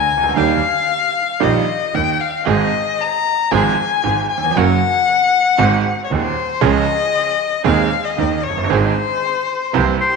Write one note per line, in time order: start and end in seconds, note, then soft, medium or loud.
0.00 0.36 G#5 loud
0.11 0.36 C#2 medium
0.17 0.24 C2 medium
0.23 0.30 C#2 medium
0.29 0.36 D2 medium
0.36 0.59 D#2 loud
0.36 0.59 D#2 medium
0.36 0.59 D#3 medium
0.36 0.58 G3 medium
0.36 0.59 A#3 medium
0.36 0.59 G4 medium
0.36 1.44 F5 loud
1.40 1.63 A#1 medium
1.40 1.64 A#1 medium
1.40 1.63 A#2 medium
1.40 1.63 D#3 medium
1.40 1.63 G3 medium
1.40 1.63 A#3 medium
1.40 1.63 G4 medium
1.40 1.96 D#5 medium
1.94 2.16 D#2 medium
1.94 2.16 D#3 medium
1.94 2.22 G5 loud
2.20 2.47 F5 medium
2.46 2.69 G#1 medium
2.46 2.69 G#2 medium
2.46 2.68 D#3 medium
2.46 2.69 G#3 medium
2.46 2.68 C4 medium
2.46 2.69 C4 medium
2.46 2.69 D#4 medium
2.46 2.69 G#4 medium
2.46 3.02 D#5 loud
3.01 3.53 A#5 loud
3.51 3.74 G#1 loud
3.51 3.74 G#1 medium
3.51 3.74 G#2 medium
3.51 3.73 F3 medium
3.51 3.74 G#3 medium
3.51 3.73 C4 medium
3.51 3.74 C4 medium
3.51 3.74 F4 medium
3.51 3.74 G#4 medium
3.51 4.29 G#5 loud
4.03 4.26 G#1 medium
4.03 4.25 G#2 medium
4.03 4.25 C4 medium
4.03 4.26 F4 medium
4.03 4.26 G#4 medium
4.30 4.59 G#5 loud
4.37 4.43 D#2 medium
4.44 4.50 E2 medium
4.51 4.57 F2 medium
4.55 4.78 F#1 loud
4.55 4.78 F#2 medium
4.55 4.78 C#3 medium
4.55 4.78 F#3 medium
4.55 4.78 A#3 medium
4.55 4.77 C#4 medium
4.55 4.77 F#4 medium
4.55 4.78 F#4 medium
4.55 4.77 A#4 medium
4.55 6.04 F#5 loud
5.58 5.81 G#1 loud
5.58 5.80 G#2 loud
5.58 5.80 D#3 medium
5.58 5.80 G#3 medium
5.58 5.80 C4 medium
5.58 5.80 F#4 medium
5.58 5.80 G#4 medium
6.04 6.13 C#5 medium
6.10 6.33 D#1 medium
6.10 6.32 D#2 medium
6.10 6.33 D#2 medium
6.10 6.32 C4 medium
6.10 6.32 F#4 medium
6.10 6.32 G#4 medium
6.10 6.63 C5 loud
6.61 6.83 C#2 loud
6.61 6.84 C#2 loud
6.61 6.83 C#3 loud
6.61 6.83 F3 medium
6.61 6.83 G#3 medium
6.61 6.83 C#4 medium
6.61 6.84 C#4 medium
6.61 6.84 F4 medium
6.61 6.84 G#4 loud
6.61 6.84 G#4 medium
6.61 7.65 D#5 loud
7.64 7.87 D#2 loud
7.64 7.87 D#3 medium
7.64 7.87 G#3 medium
7.64 7.87 C4 medium
7.64 7.87 D#4 medium
7.64 7.87 G#4 medium
7.64 7.88 G#4 medium
7.64 8.06 F5 medium
8.04 8.45 D#5 medium
8.17 8.40 D#2 medium
8.17 8.40 D#3 medium
8.17 8.39 C#4 medium
8.17 8.40 D#4 medium
8.17 8.40 G4 medium
8.43 8.69 F#1 medium
8.43 8.71 C#5 medium
8.50 8.57 F1 medium
8.57 8.64 F#1 medium
8.64 8.70 G1 medium
8.69 8.92 G#1 loud
8.69 8.92 G#2 medium
8.69 8.91 D#3 medium
8.69 8.92 G#3 medium
8.69 8.92 C4 medium
8.69 8.92 D#4 medium
8.69 8.92 G#4 medium
8.69 10.00 C5 medium
9.73 9.96 C2 loud
9.73 9.96 C2 medium
9.73 9.96 C3 medium
9.73 9.96 E3 medium
9.73 9.96 A#3 medium
9.73 9.96 C4 medium
9.73 9.96 E4 medium
9.73 9.97 G4 medium
9.73 9.96 A#4 medium
10.00 10.16 G4 medium
10.00 10.16 C5 medium